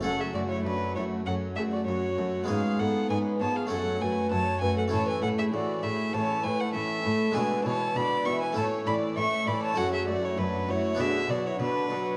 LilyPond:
<<
  \new Staff \with { instrumentName = "Violin" } { \time 4/4 \key fis \minor \tempo 4 = 99 fis''16 e''16 d''16 cis''16 b'8 cis''8 fis''8 e''16 d''16 cis''4 | eis''8 fis''8 gis''8 a''16 eis''16 fis''8 gis''8 a''8 gis''16 fis''16 | a''16 gis''16 fis''16 e''16 d''8 e''8 a''8 gis''16 fis''16 e''4 | gis''8 a''8 b''8 cis'''16 gis''16 a''8 b''8 cis'''8 b''16 a''16 |
fis''16 e''16 d''16 cis''16 b'8 cis''8 e''8 d''16 cis''16 b'4 | }
  \new Staff \with { instrumentName = "Violin section" } { \time 4/4 \key fis \minor a'16 gis'16 fis'16 e'16 d'8 e'8 a'8 gis'16 fis'16 fis'4 | gis'8 a'8 b'8 cis''16 gis'16 a'8 b'8 cis''8 b'16 a'16 | cis''16 b'16 a'16 gis'16 fis'8 gis'8 cis''8 b'16 a'16 a'4 | b'8 cis''8 d''8 e''16 b'16 cis''8 d''8 e''8 d''16 cis''16 |
a'16 gis'16 fis'16 e'16 d'8 e'8 gis'8 fis'16 e'16 d'4 | }
  \new Staff \with { instrumentName = "Violin section" } { \time 4/4 \key fis \minor cis'8 fis'8 cis'8 fis'8 cis'8 fis'8 cis'8 fis'8 | cis'8 eis'8 cis'8 eis'8 cis'8 fis'8 cis'8 fis'8 | cis'8 e'8 cis'8 e'8 cis'8 e'8 cis'8 e'8 | d'8 e'8 d'8 e'8 cis'8 e'8 cis'8 e'8 |
cis'8 fis'8 cis'8 fis'8 d'8 fis'8 d'8 fis'8 | }
  \new Staff \with { instrumentName = "Viola section" } { \clef bass \time 4/4 \key fis \minor fis8 a8 fis8 a8 fis8 a8 fis8 a8 | gis8 b8 gis8 b8 fis8 a8 fis8 a8 | e8 a8 e8 a8 e8 a8 e8 a8 | d8 e8 d8 e8 a8 e8 a8 e8 |
fis8 a8 fis8 a8 d8 fis8 d8 fis8 | }
  \new Staff \with { instrumentName = "Harpsichord" } { \time 4/4 \key fis \minor <a cis' a'>1 | <gis b cis' gis'>2 <a cis' a'>2 | <a cis' e'>1 | <gis d' e'>2 <a cis' e'>2 |
<a cis' fis'>2 <b d' fis'>2 | }
  \new Staff \with { instrumentName = "Harpsichord" } { \clef bass \time 4/4 \key fis \minor fis,8 fis,8 fis,8 fis,8 fis,8 fis,8 fis,8 fis,8 | gis,8 gis,8 gis,8 gis,8 fis,8 fis,8 fis,8 fis,8 | a,8 a,8 a,8 a,8 a,8 a,8 a,8 a,8 | b,8 b,8 b,8 b,8 a,8 a,8 a,8 a,8 |
fis,8 fis,8 fis,8 fis,8 b,8 b,8 b,8 b,8 | }
  \new Staff \with { instrumentName = "Cello section" } { \clef bass \time 4/4 \key fis \minor fis,8 fis,8 fis,8 fis,8 fis,8 fis,8 fis,8 fis,8 | gis,8 gis,8 gis,8 gis,8 fis,8 fis,8 fis,8 fis,8 | a,8 a,8 a,8 a,8 a,8 a,8 a,8 a,8 | b,8 b,8 b,8 b,8 a,8 a,8 a,8 a,8 |
fis,8 fis,8 fis,8 fis,8 b,8 b,8 b,8 b,8 | }
>>